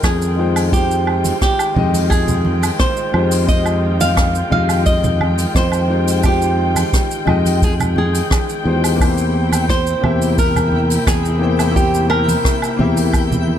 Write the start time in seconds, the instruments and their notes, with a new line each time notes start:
Already playing: string section D#3 G#3 F4 G5, grand piano G#3 D#4 F4 G4 D#5
0.03 fingered electric bass F2, nylon-string guitar G#4, kick, cross-stick, open hi-hat, low woodblock, shaker
0.22 shaker
0.36 grand piano G#3 D#4 F4 G5
0.40 grand piano C5
0.56 open hi-hat, low woodblock, shaker
0.69 grand piano G#3 D#4 F4, kick
0.73 nylon-string guitar G4, grand piano G4 C5, open hi-hat, shaker
0.91 shaker
1.07 low woodblock
1.25 open hi-hat, high conga, shaker
1.41 nylon-string guitar G4, kick, cross-stick, open hi-hat, shaker
1.59 low woodblock, shaker
1.74 fingered electric bass F2, grand piano G#3 D#4 F4 G4, low conga
1.78 grand piano D#5
1.94 open hi-hat, high conga, shaker
2.10 nylon-string guitar G#4, kick, open hi-hat, low woodblock, shaker
2.28 low conga, shaker
2.45 high conga
2.63 open hi-hat, low woodblock, shaker
2.79 nylon-string guitar C5, kick, cross-stick, open hi-hat, shaker
2.97 shaker
3.12 fingered electric bass F2, grand piano G#3 D#4 F4 G4 C5, low woodblock
3.31 open hi-hat, shaker
3.44 grand piano G#3 D#4 F4, kick
3.48 grand piano G4 C5, nylon-string guitar D#5, open hi-hat, shaker
3.66 low woodblock, shaker
4.00 nylon-string guitar F5, open hi-hat, high conga, shaker
4.17 kick, cross-stick, open hi-hat, low woodblock, shaker
4.35 shaker
4.50 fingered electric bass F2, grand piano G#3 D#4 F4 G4 D#5, nylon-string guitar F5, low conga
4.69 open hi-hat, low woodblock, shaker
4.85 nylon-string guitar D#5, kick, open hi-hat, shaker
5.04 low conga, shaker
5.21 high conga, low woodblock
5.38 open hi-hat, shaker
5.55 fingered electric bass F2, nylon-string guitar C5, kick, cross-stick, open hi-hat, shaker
5.72 low woodblock, shaker
5.88 grand piano G#3 D#4 F4 G4 C5
6.07 open hi-hat, shaker
6.20 grand piano G#3 D#4 F4, kick, open hi-hat, low woodblock, shaker
6.25 nylon-string guitar G4, grand piano G4 C5
6.42 shaker
6.76 open hi-hat, high conga, low woodblock, shaker
6.93 kick, cross-stick, open hi-hat, shaker
7.11 shaker
7.25 fingered electric bass F2, grand piano G#3 D#4 F4 G4 D#5, low conga, low woodblock
7.45 open hi-hat, high conga, shaker
7.62 nylon-string guitar G#4, kick, open hi-hat, shaker
7.79 low conga, low woodblock, shaker
7.96 nylon-string guitar G#4, high conga
8.14 open hi-hat, shaker
8.30 kick, cross-stick, open hi-hat, high conga, low woodblock, shaker
8.49 shaker
8.64 fingered electric bass E2, grand piano G#3 D#4 F4 G4
8.68 grand piano C5
8.84 open hi-hat, low woodblock, shaker
8.96 grand piano A#3 C4
9.00 string section C3 A#3 E4, grand piano E4 G4, synth texture E4 G5, kick, open hi-hat, low woodblock, shaker
9.04 grand piano C5
9.18 shaker
9.52 open hi-hat, high conga, low woodblock, shaker
9.69 nylon-string guitar C5, kick, cross-stick, open hi-hat, shaker
9.87 shaker
10.01 fingered electric bass E2, grand piano A#3 C4 E4 G4 E5, low conga, low woodblock
10.21 open hi-hat, shaker
10.38 nylon-string guitar A#4, kick, open hi-hat, shaker
10.56 low conga, low woodblock, shaker
10.72 high conga
10.90 open hi-hat, shaker
11.07 fingered electric bass E2, nylon-string guitar G#4, kick, cross-stick, open hi-hat, low woodblock, shaker
11.25 shaker
11.39 grand piano A#3 C4 E4 G5
11.43 grand piano C5
11.59 open hi-hat, low woodblock, shaker
11.72 grand piano A#3 C4 E4, kick
11.76 nylon-string guitar G4, grand piano G4 C5, open hi-hat, shaker
11.94 shaker
12.10 nylon-string guitar A#4, low woodblock
12.28 open hi-hat, high conga, shaker
12.45 kick, cross-stick, open hi-hat, shaker
12.62 low woodblock, shaker
12.77 fingered electric bass E2, grand piano A#3 C4 E4 G4, low conga
12.81 grand piano E5
12.97 open hi-hat, high conga, shaker
13.13 kick, open hi-hat, low woodblock, shaker
13.32 low conga, shaker
13.48 high conga